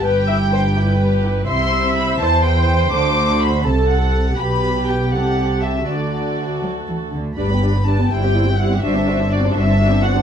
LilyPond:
<<
  \new Staff \with { instrumentName = "Violin section" } { \time 6/8 \key e \minor \tempo 4. = 83 g''2~ g''8 r8 | \key d \mixolydian c'''4 b''8 a''8 g''4 | d'''4 b''8 a''8 fis''4 | b''4 g''8 fis''4 e''8 |
d''4. r4. | b''4 a''8 g''4 fis''8 | e''4 d''8 e''4 fis''8 | }
  \new Staff \with { instrumentName = "Violin section" } { \time 6/8 \key e \minor << { b'8 g'8 b'8 g'8 b'8 g'8 | \key d \mixolydian c''2. | a'2. | b'4. a'4. |
a'2~ a'8 r8 | <b' d''>16 <g' b'>16 <b' d''>16 <g' b'>16 <b' d''>16 <g' b'>16 <e' c''>16 <g' e''>16 <e' c''>16 <g' e''>16 <e' c''>16 <g' e''>16 | <c'' d''>16 <a' c''>16 <c'' d''>16 <a' c''>16 <c'' d''>16 <a' c''>16 <c'' d''>16 <a' c''>16 <c'' d''>16 <a' c''>16 <c'' d''>16 <a' c''>16 | } \\ { g'8 e'8 g'8 e'8 g'8 e'8 | e'4. e'4. | fis'4. a'4. | g'2. |
fis'2~ fis'8 r8 | r2. | r2. | } >> }
  \new Staff \with { instrumentName = "Viola section" } { \time 6/8 \key e \minor b'8 e''8 c''8 b'4. | \key d \mixolydian e''4. c''4.~ | c''4. a'4. | g'2. |
fis'2~ fis'16 r8. | <g d'>16 b16 <g d'>16 b16 <g d'>16 b16 <g e'>16 <c' g'>16 <g e'>16 <c' g'>16 <g e'>16 <c' g'>16 | <d' fis'>16 <c' d'>16 <d' fis'>16 <c' d'>16 <d' fis'>16 <c' d'>16 <d' fis'>16 <c' d'>16 <d' fis'>16 <c' d'>16 <d' fis'>16 <c' d'>16 | }
  \new Staff \with { instrumentName = "Cello section" } { \clef bass \time 6/8 \key e \minor g,2. | \key d \mixolydian c4. e4. | d4. c4. | b,4. c4. |
d4. fis8 e8 d8 | g,4. g,4. | g,4. g,4. | }
  \new Staff \with { instrumentName = "Double bass section" } { \clef bass \time 6/8 \key e \minor g,,2. | \key d \mixolydian c,4. e,4. | d,4. c,4. | b,,4. c,4. |
d,2~ d,8 r8 | g,,4. g,,4. | g,,4. g,,4. | }
>>